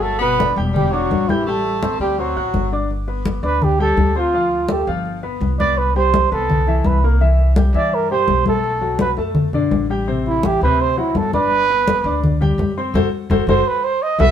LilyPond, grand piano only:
\new Staff \with { instrumentName = "Grand piano" } { \time 4/4 \key g \major \tempo 4 = 167 <ges ges' ges''>8 <b, b b'>8 <d d' d''>8 <g g' g''>4 <d' d'' d'''>4 <g' g'' g'''>8 | <g g' g''>4 <c' c'' c'''>4 <c' c'' c'''>8 <fis' fis'' fis'''>4 <d' d'' d'''>8 | r8 <b b' b''>4 <d' d'' d'''>4 <g g' g''>4 <c' c'' c'''>8 | <f f' f''>4 <a a' a''>8 <f f' f''>4 <b b' b''>4 <b b' b''>8~ |
<b b' b''>8 <g g' g''>4 <b b' b''>4 <e e' e''>4 <bes bes' bes''>8 | <e e' e''>4 <g g' g''>8 <e e' e''>4 <g g' g''>4 <a a' a''>8~ | <a a' a''>8 <fis fis' fis''>4 <a a' a''>4 <d d' d''>4 <g g' g''>8 | <c c' c''>4 <e e' e''>8 <c c' c''>4 <fis fis' fis''>4 <d' d'' d'''>8~ |
<d' d'' d'''>8 <b b' b''>4 <d' d'' d'''>4 <g g' g''>4 <c' c'' c'''>8 | <fis' a' c''>8 r8 <fis' a' c''>8 <fis' a' c''>8 r4. <fis' a' b'>8 | }